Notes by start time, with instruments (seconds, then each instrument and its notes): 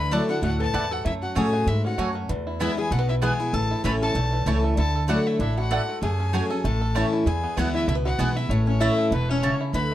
Already playing: upright bass D2, steel-string acoustic guitar D3, five-string banjo E3 A3 E4 A4, resonator guitar played with a steel bar B4, fiddle B5
0.11 steel-string acoustic guitar F#3 A3 D4 E4, mandolin A3 E4 D5 F#5, five-string banjo A3, resonator guitar played with a steel bar A4, fiddle A5
0.29 five-string banjo D4, steel-string acoustic guitar D4 E4, resonator guitar played with a steel bar F#4, fiddle F#5
0.42 upright bass D2, steel-string acoustic guitar A2, five-string banjo A3, resonator guitar played with a steel bar F#4, fiddle F#5
0.60 five-string banjo E3, resonator guitar played with a steel bar A4, fiddle A5
0.74 upright bass E2, steel-string acoustic guitar G#2, mandolin A3 E4 D5 F#5, five-string banjo E4
0.91 resonator guitar played with a steel bar F#4, five-string banjo A4, fiddle F#5
1.05 upright bass F#2, steel-string acoustic guitar F#2, five-string banjo A3, resonator guitar played with a steel bar E4, fiddle E5
1.22 resonator guitar played with a steel bar F#4, fiddle F#5
1.35 upright bass A2, steel-string acoustic guitar F#3 A3 C#4 G#4, mandolin A3 F#4 C#5 G#5, five-string banjo C#4, resonator guitar played with a steel bar G#4, fiddle G#5
1.53 five-string banjo F#4
1.67 upright bass G#2, steel-string acoustic guitar G#2, resonator guitar played with a steel bar E4, fiddle E5
1.85 five-string banjo C#4, resonator guitar played with a steel bar F#4, fiddle F#5
1.98 upright bass F#2, steel-string acoustic guitar F#2, mandolin A3 F#4 C#5 G#5, five-string banjo A3
2.15 five-string banjo C#4
2.29 upright bass E2, steel-string acoustic guitar E2, five-string banjo E3
2.47 five-string banjo E4
2.60 steel-string acoustic guitar E3 G#3 B3 E4, mandolin B3 E4 B4 G#5, five-string banjo B3, resonator guitar played with a steel bar E4, fiddle E5
2.77 steel-string acoustic guitar B3 E4, five-string banjo E4, resonator guitar played with a steel bar G#4, fiddle G#5
2.91 upright bass B1, steel-string acoustic guitar B2, five-string banjo A3, resonator guitar played with a steel bar F#4, fiddle F#5
2.99 five-string banjo B3
3.09 five-string banjo E3, resonator guitar played with a steel bar E4, fiddle E5
3.22 steel-string acoustic guitar E3 G#3 B3 E4, mandolin B3 E4 B4 G#5, five-string banjo E4, resonator guitar played with a steel bar G#4, fiddle G#5
3.40 steel-string acoustic guitar B3 E4, five-string banjo E4
3.53 upright bass A1, steel-string acoustic guitar A2, five-string banjo E3, resonator guitar played with a steel bar A4, fiddle A5
3.71 five-string banjo E4
3.84 upright bass A1, steel-string acoustic guitar E3 A3 C#4 E4, mandolin A3 E4 C#5 A5, five-string banjo A3, resonator guitar played with a steel bar B4, fiddle B5
4.02 five-string banjo C#4, resonator guitar played with a steel bar A4, fiddle A5
4.15 upright bass B1, steel-string acoustic guitar E2, five-string banjo A3
4.33 five-string banjo E3
4.46 upright bass C#2, steel-string acoustic guitar E3 A3 C#4 E4, mandolin A3 E4 C#5 A5, five-string banjo E4
4.64 five-string banjo A4
4.77 upright bass D2, steel-string acoustic guitar D3, five-string banjo E4, resonator guitar played with a steel bar A4, fiddle A5
4.95 five-string banjo A4
5.08 steel-string acoustic guitar F#3 A3 D4 E4, mandolin A3 E4 D5 F#5, five-string banjo E4, resonator guitar played with a steel bar F#4, fiddle F#5
5.27 five-string banjo A3, resonator guitar played with a steel bar E4, fiddle E5
5.39 upright bass A1, steel-string acoustic guitar A2, five-string banjo D4, resonator guitar played with a steel bar E4, fiddle E5
5.58 five-string banjo E4, resonator guitar played with a steel bar F#4, fiddle F#5
5.71 steel-string acoustic guitar G#2, mandolin A3 E4 D5 F#5, five-string banjo A4
5.89 five-string banjo A3
6.02 upright bass F#2, steel-string acoustic guitar F#2, five-string banjo A3, resonator guitar played with a steel bar G#4, fiddle G#5
6.20 five-string banjo C#4
6.33 steel-string acoustic guitar F#3 A3 C#4 G#4, mandolin A3 F#4 C#5 G#5, five-string banjo F#4
6.50 steel-string acoustic guitar C#4 G#4, five-string banjo A4
6.64 upright bass A1, steel-string acoustic guitar A2, five-string banjo A3, resonator guitar played with a steel bar A4, fiddle A5
6.81 five-string banjo A4
6.95 steel-string acoustic guitar E3 A3 C#4 E4, mandolin A3 E4 C#5 A5, five-string banjo C#4
7.13 five-string banjo E4
7.26 upright bass E2, steel-string acoustic guitar E2, five-string banjo E4, resonator guitar played with a steel bar G#4, fiddle G#5
7.43 five-string banjo B3
7.57 upright bass D2, five-string banjo E3, steel-string acoustic guitar E3 G#3 B3 E4, mandolin B3 E4 B4 G#5, resonator guitar played with a steel bar F#4, fiddle F#5
7.74 five-string banjo E4, resonator guitar played with a steel bar E4, fiddle E5
7.88 upright bass C#2, steel-string acoustic guitar B2, five-string banjo A3, resonator guitar played with a steel bar E4, fiddle E5
7.95 five-string banjo B3
8.05 five-string banjo E4, resonator guitar played with a steel bar F#4, fiddle F#5
8.18 upright bass B1, steel-string acoustic guitar E3 G#3 B3 E4, mandolin B3 E4 B4 G#5, five-string banjo E4
8.36 steel-string acoustic guitar B3 E4, five-string banjo E4, resonator guitar played with a steel bar E4, fiddle E5
8.49 upright bass A1, steel-string acoustic guitar A2, five-string banjo A3, resonator guitar played with a steel bar C#4, fiddle C#5
8.67 resonator guitar played with a steel bar C#4, five-string banjo C#4, fiddle C#5
8.80 steel-string acoustic guitar E3 A3 C#4 E4, mandolin A3 E4 C#5 A5, resonator guitar played with a steel bar E4, five-string banjo E4, fiddle E5
8.98 five-string banjo A3
9.11 upright bass E1, steel-string acoustic guitar B2, resonator guitar played with a steel bar B3, five-string banjo E4, fiddle B4
9.29 five-string banjo A3, resonator guitar played with a steel bar C#4, fiddle C#5
9.43 steel-string acoustic guitar C#3, mandolin A3 E4 C#5 A5, five-string banjo C#4
9.61 five-string banjo E4
9.73 upright bass D2, steel-string acoustic guitar D3, five-string banjo E4, resonator guitar played with a steel bar B4, fiddle B5